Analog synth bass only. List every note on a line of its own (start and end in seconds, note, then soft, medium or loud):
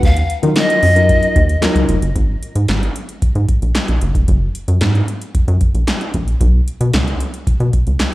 0.03 0.24 D#2 loud
0.43 0.53 D#3 medium
0.83 1.14 F#2 medium
1.36 1.56 D#2 loud
1.75 1.86 C#2 medium
1.89 1.99 F1 medium
2.02 2.12 F#1 loud
2.16 2.36 G#1 loud
2.55 2.66 G#2 medium
2.69 2.89 G#1 medium
3.22 3.27 G#2 soft
3.35 3.46 G#2 medium
3.62 3.72 A#1 medium
3.89 3.99 A#1 loud
4.02 4.12 F#1 medium
4.15 4.25 F1 medium
4.28 4.49 F#1 loud
4.68 4.78 F#2 medium
4.81 5.02 G#2 medium
5.35 5.40 F#2 soft
5.48 5.58 F#2 loud
5.74 5.85 A#1 medium
6.14 6.35 A#1 medium
6.41 6.61 B1 loud
6.81 6.91 B2 medium
6.94 7.14 C#2 medium
7.47 7.52 B2 soft
7.60 7.70 B2 medium
7.87 7.97 C#2 medium